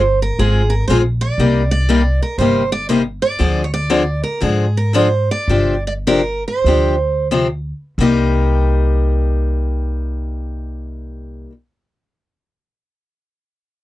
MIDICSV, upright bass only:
0, 0, Header, 1, 2, 480
1, 0, Start_track
1, 0, Key_signature, -3, "minor"
1, 0, Tempo, 502934
1, 1324, Time_signature, 4, 2, 24, 8
1, 4209, Tempo, 536673
1, 5169, Tempo, 585366
1, 6129, Tempo, 663717
1, 7089, Tempo, 715990
1, 11015, End_track
2, 0, Start_track
2, 0, Title_t, "Upright bass"
2, 0, Program_c, 0, 32
2, 0, Note_on_c, 0, 31, 77
2, 291, Note_off_c, 0, 31, 0
2, 370, Note_on_c, 0, 32, 75
2, 775, Note_off_c, 0, 32, 0
2, 843, Note_on_c, 0, 34, 68
2, 1251, Note_off_c, 0, 34, 0
2, 1316, Note_on_c, 0, 36, 81
2, 2085, Note_off_c, 0, 36, 0
2, 2272, Note_on_c, 0, 31, 77
2, 3041, Note_off_c, 0, 31, 0
2, 3242, Note_on_c, 0, 38, 85
2, 4017, Note_off_c, 0, 38, 0
2, 4218, Note_on_c, 0, 44, 74
2, 4981, Note_off_c, 0, 44, 0
2, 5163, Note_on_c, 0, 31, 80
2, 5934, Note_off_c, 0, 31, 0
2, 6121, Note_on_c, 0, 38, 68
2, 6893, Note_off_c, 0, 38, 0
2, 7087, Note_on_c, 0, 36, 82
2, 9415, Note_off_c, 0, 36, 0
2, 11015, End_track
0, 0, End_of_file